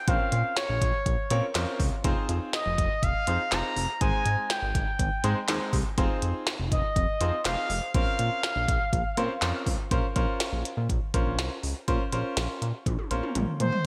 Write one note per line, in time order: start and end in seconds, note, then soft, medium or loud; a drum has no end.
0.08 0.18 A#1 loud
0.08 0.59 C4 medium
0.08 0.59 C#4 medium
0.08 0.59 F4 medium
0.08 0.59 A#4 medium
0.08 0.59 C5 medium
0.08 0.56 F5 loud
0.08 kick loud
0.08 closed hi-hat medium
0.32 0.43 A#2 loud
0.32 closed hi-hat medium
0.57 1.51 C#5 medium
0.57 snare loud
0.57 closed hi-hat medium
0.69 0.80 A#1 loud
0.81 0.92 A#1 loud
0.81 kick medium
0.81 closed hi-hat medium
1.06 1.17 A#1 loud
1.06 kick medium
1.06 closed hi-hat medium
1.30 1.41 A#2 loud
1.30 1.44 C4 medium
1.30 1.44 C#4 medium
1.30 1.44 F4 medium
1.30 1.44 A#4 medium
1.30 1.44 C#5 loud
1.30 closed hi-hat medium
1.55 1.66 F2 loud
1.55 1.81 C4 medium
1.55 1.81 C#4 medium
1.55 1.81 F4 medium
1.55 1.81 A#4 medium
1.55 1.81 C5 medium
1.55 snare loud
1.55 clap medium
1.55 closed hi-hat medium
1.80 1.90 C#2 medium
1.80 kick medium
1.80 open hi-hat medium
2.04 2.15 F1 loud
2.04 2.56 C4 medium
2.04 2.56 D#4 medium
2.04 2.56 F4 medium
2.04 2.56 G#4 medium
2.04 2.56 C5 loud
2.04 kick loud
2.04 closed hi-hat medium
2.29 2.40 F2 loud
2.29 closed hi-hat medium
2.53 3.04 D#5 loud
2.53 snare loud
2.53 closed hi-hat medium
2.66 2.77 F1 loud
2.78 2.89 F1 loud
2.78 kick medium
2.78 closed hi-hat medium
3.03 3.13 F1 loud
3.03 3.54 F5 loud
3.03 kick medium
3.03 closed hi-hat medium
3.27 3.38 F2 loud
3.27 3.40 C4 medium
3.27 3.40 D#4 medium
3.27 3.40 F4 medium
3.27 3.40 G#4 medium
3.27 3.40 C5 medium
3.27 closed hi-hat medium
3.52 3.63 F1 loud
3.52 3.78 C4 medium
3.52 3.78 D#4 medium
3.52 3.78 F4 medium
3.52 3.78 G#4 medium
3.52 3.78 C5 medium
3.52 4.01 A#5 loud
3.52 snare loud
3.52 clap medium
3.52 closed hi-hat medium
3.76 3.87 F1 loud
3.76 open hi-hat medium
4.01 4.12 G#1 loud
4.01 4.53 G#3 medium
4.01 4.53 C4 medium
4.01 4.53 D#4 medium
4.01 4.53 G#4 medium
4.01 4.53 C5 medium
4.01 4.52 G#5 loud
4.01 kick loud
4.01 closed hi-hat medium
4.26 4.36 G#2 loud
4.26 closed hi-hat medium
4.50 5.49 G5 medium
4.50 snare loud
4.50 closed hi-hat medium
4.63 4.73 G#1 loud
4.75 4.86 G#1 loud
4.75 kick medium
4.75 closed hi-hat medium
4.99 5.10 G#1 loud
4.99 kick medium
4.99 closed hi-hat medium
5.24 5.35 G#2 loud
5.24 5.37 G#3 medium
5.24 5.37 C4 medium
5.24 5.37 D#4 medium
5.24 5.37 G#4 medium
5.24 5.37 C5 loud
5.24 closed hi-hat medium
5.48 5.59 D#2 loud
5.48 5.74 G#3 medium
5.48 5.74 C4 medium
5.48 5.74 D#4 medium
5.48 5.74 G#4 medium
5.48 5.74 C5 loud
5.48 snare loud
5.48 clap medium
5.48 closed hi-hat medium
5.73 5.84 C2 loud
5.73 kick medium
5.73 open hi-hat medium
5.98 6.09 F1 loud
5.98 6.49 C4 medium
5.98 6.49 D#4 medium
5.98 6.49 F4 medium
5.98 6.49 G#4 medium
5.98 6.49 C5 loud
5.98 kick loud
5.98 closed hi-hat medium
6.22 6.33 F2 medium
6.22 closed hi-hat medium
6.47 snare loud
6.47 closed hi-hat medium
6.59 6.70 F1 medium
6.72 6.82 F1 loud
6.72 7.41 D#5 loud
6.72 kick medium
6.72 closed hi-hat medium
6.96 7.07 F1 loud
6.96 kick medium
6.96 closed hi-hat medium
7.21 7.32 F2 loud
7.21 7.34 C4 medium
7.21 7.34 D#4 medium
7.21 7.34 F4 medium
7.21 7.34 G#4 medium
7.21 7.34 C5 medium
7.21 closed hi-hat medium
7.45 7.56 F1 loud
7.45 7.71 C4 medium
7.45 7.71 D#4 medium
7.45 7.71 F4 medium
7.45 7.71 G#4 medium
7.45 7.71 C5 medium
7.45 7.91 F5 loud
7.45 snare loud
7.45 clap medium
7.45 closed hi-hat medium
7.70 7.81 F1 loud
7.70 open hi-hat medium
7.94 8.05 A#1 loud
7.94 8.46 C4 medium
7.94 8.46 C#4 medium
7.94 8.46 F4 medium
7.94 8.46 A#4 medium
7.94 8.46 C5 medium
7.94 9.63 F5 loud
7.94 kick loud
7.94 closed hi-hat medium
8.19 8.30 A#2 loud
8.19 closed hi-hat medium
8.43 snare loud
8.43 closed hi-hat medium
8.56 8.67 A#1 loud
8.68 8.79 A#1 loud
8.68 kick medium
8.68 closed hi-hat medium
8.93 9.04 A#1 loud
8.93 kick medium
8.93 closed hi-hat medium
9.17 9.28 A#2 loud
9.17 9.30 C4 medium
9.17 9.30 C#4 medium
9.17 9.30 F4 medium
9.17 9.30 A#4 medium
9.17 9.30 C5 loud
9.17 closed hi-hat medium
9.42 9.53 F2 loud
9.42 9.68 C4 medium
9.42 9.68 C#4 medium
9.42 9.68 F4 medium
9.42 9.68 A#4 medium
9.42 9.68 C5 loud
9.42 snare loud
9.42 clap medium
9.42 closed hi-hat medium
9.66 9.77 C#2 loud
9.66 kick medium
9.66 open hi-hat medium
9.91 10.02 A#1 loud
9.91 10.04 C#4 medium
9.91 10.04 F4 medium
9.91 10.04 A#4 medium
9.91 10.04 C5 loud
9.91 kick loud
9.91 closed hi-hat medium
10.16 10.27 A#1 loud
10.16 10.67 C#4 medium
10.16 10.67 F4 medium
10.16 10.67 A#4 medium
10.16 10.67 C5 medium
10.16 kick medium
10.16 closed hi-hat medium
10.40 snare loud
10.40 closed hi-hat medium
10.53 10.63 A#1 loud
10.65 closed hi-hat medium
10.77 10.88 A#2 loud
10.89 11.00 A#1 loud
10.89 kick medium
10.89 closed hi-hat medium
11.14 11.25 A#1 loud
11.14 11.53 C#4 medium
11.14 11.53 F4 medium
11.14 11.53 A#4 medium
11.14 11.53 C5 medium
11.14 kick medium
11.14 closed hi-hat medium
11.27 11.37 A#1 loud
11.39 11.50 C2 medium
11.39 snare loud
11.39 closed hi-hat medium
11.63 11.74 C#2 loud
11.63 open hi-hat medium
11.88 11.99 A#1 loud
11.88 12.01 C#4 medium
11.88 12.01 F4 medium
11.88 12.01 A#4 medium
11.88 12.01 C5 loud
11.88 kick loud
11.88 closed hi-hat medium
12.12 12.23 A#1 loud
12.12 12.64 C#4 medium
12.12 12.64 F4 medium
12.12 12.64 A#4 medium
12.12 12.64 C5 loud
12.12 closed hi-hat medium
12.37 12.48 A#1 loud
12.37 snare loud
12.37 closed hi-hat medium
12.62 12.73 A#2 loud
12.62 closed hi-hat medium
12.86 12.97 A#1 loud
12.86 kick medium
12.86 closed hi-hat medium
12.86 high tom medium
12.99 high tom medium
13.11 13.22 A#1 loud
13.11 13.50 C#4 medium
13.11 13.50 F4 medium
13.11 13.50 A#4 medium
13.11 13.50 C5 medium
13.11 closed hi-hat medium
13.23 mid tom medium
13.35 13.46 A#1 loud
13.35 closed hi-hat medium
13.35 mid tom medium
13.60 13.71 A#2 loud
13.60 13.86 C5 loud
13.60 closed hi-hat medium
13.60 floor tom medium
13.72 floor tom medium